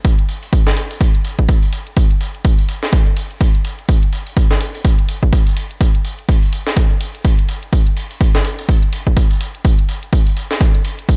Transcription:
0.05 kick, closed hi-hat
0.19 closed hi-hat
0.29 closed hi-hat
0.43 closed hi-hat
0.53 kick, closed hi-hat
0.67 snare, closed hi-hat
0.77 closed hi-hat
0.91 closed hi-hat
1.01 kick, closed hi-hat
1.15 closed hi-hat
1.25 closed hi-hat
1.39 kick, closed hi-hat
1.49 kick, closed hi-hat
1.63 closed hi-hat
1.73 closed hi-hat
1.87 closed hi-hat
1.97 kick, closed hi-hat
2.11 closed hi-hat
2.21 closed hi-hat
2.35 closed hi-hat
2.45 kick, closed hi-hat
2.59 closed hi-hat
2.69 closed hi-hat
2.83 snare, closed hi-hat
2.93 kick, closed hi-hat
3.07 closed hi-hat
3.17 closed hi-hat
3.31 closed hi-hat
3.41 kick, closed hi-hat
3.55 closed hi-hat
3.65 closed hi-hat
3.79 closed hi-hat
3.89 kick, closed hi-hat
4.03 closed hi-hat
4.13 closed hi-hat
4.27 closed hi-hat
4.37 kick, closed hi-hat
4.51 snare, closed hi-hat
4.61 closed hi-hat
4.75 closed hi-hat
4.85 kick, closed hi-hat
4.99 closed hi-hat
5.09 closed hi-hat
5.23 kick, closed hi-hat
5.33 kick, closed hi-hat
5.47 closed hi-hat
5.57 closed hi-hat
5.71 closed hi-hat
5.81 kick, closed hi-hat
5.95 closed hi-hat
6.05 closed hi-hat
6.19 closed hi-hat
6.29 kick, closed hi-hat
6.43 closed hi-hat
6.53 closed hi-hat
6.67 snare, closed hi-hat
6.77 kick, closed hi-hat
6.91 closed hi-hat
7.01 closed hi-hat
7.15 closed hi-hat
7.25 kick, closed hi-hat
7.39 closed hi-hat
7.49 closed hi-hat
7.63 closed hi-hat
7.73 kick, closed hi-hat
7.87 closed hi-hat
7.97 closed hi-hat
8.11 closed hi-hat
8.21 kick, closed hi-hat
8.35 snare, closed hi-hat
8.45 closed hi-hat
8.59 closed hi-hat
8.69 kick, closed hi-hat
8.83 closed hi-hat
8.93 closed hi-hat
9.07 kick, closed hi-hat
9.17 kick, closed hi-hat
9.31 closed hi-hat
9.41 closed hi-hat
9.55 closed hi-hat
9.65 kick, closed hi-hat
9.79 closed hi-hat
9.89 closed hi-hat
10.03 closed hi-hat
10.13 kick, closed hi-hat
10.27 closed hi-hat
10.37 closed hi-hat
10.51 snare, closed hi-hat
10.61 kick, closed hi-hat
10.75 closed hi-hat
10.85 closed hi-hat
10.99 closed hi-hat
11.09 kick, closed hi-hat

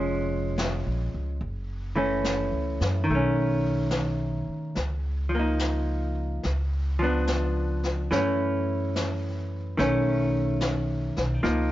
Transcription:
Already playing: F1 F3 G#3 C#4
0.58 snare, hi-hat pedal
0.86 A#1
1.14 C#2
1.41 F#1, brush sweep
1.95 E3 A3 C#4
2.24 snare, hi-hat pedal
2.52 C#2
2.80 F#2, snare
3.04 D#3, brush sweep
3.09 B1 A3
3.15 C#4
3.91 snare, hi-hat pedal
4.48 muted upright bass stroke
4.75 C#2, brush sweep, snare
5.29 F3
5.35 A#3
5.40 D#4
5.59 snare, hi-hat pedal
6.43 C#2, brush sweep, snare
6.99 F3 B3
7.04 D4
7.27 snare, hi-hat pedal
7.83 snare
8.11 F#2 E3 A3 C#4, brush sweep, snare
8.96 snare, hi-hat pedal
9.77 B1 D#3 A3 C#4, brush sweep, snare
10.61 snare, hi-hat pedal
11.16 B1, snare
11.43 C#2 F3 A#3 D#4, brush sweep, snare

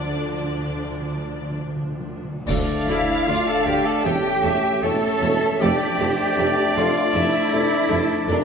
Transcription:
Already playing: D2 D3 F3 D4 D5
0.09 D3
0.33 D3
0.42 D3
0.50 D3
0.58 D3
0.67 D3
0.75 D3
0.84 D3
1.00 D3
1.09 D3
1.17 D3
1.25 D3
1.34 D3
1.42 D3
1.51 D3
1.59 D3
1.67 D3
1.76 D3
1.83 D3
1.91 D3
2.00 D3
2.08 D3
2.17 D3
2.24 D3
2.33 D3
2.41 D3
2.47 D2 A2 D3 A3 D4 A4 D5 F5, concert bass drum, crash
2.86 D2 E4 A4 D5 E5
2.90 A3
3.27 D2 A2 A3 D4 F4 A4 D5 F5
3.45 A4 A5
3.65 D2 A3 G4 A4 D5 G5
3.84 A4 A5
4.04 E1 E2 A2 A3 C#4 G4 A4 C#5 E5 G5
4.42 E1 E2 A3 A4 C#5 E5
4.82 E1 E2 A2 A3 C#4 A4 C#5 E5 A5
5.21 E1 E2 G2 A3 A4 C#5
5.60 F1 F2 A3 D4 G4 A4 D5 G5
5.99 F1 F2 A3 A4 C5 D5
6.37 F1 F2 A3 A4 D5
6.76 F1 F2 A3 F4 A4 D5 F5
7.14 F1 F2 A3 E4 A4 D5 E5
7.52 F1 F2 A3 A4 D5
7.89 F1 F2 A3 A4 D5
8.27 F1 F2 A3 D4 A4 A#4 D5

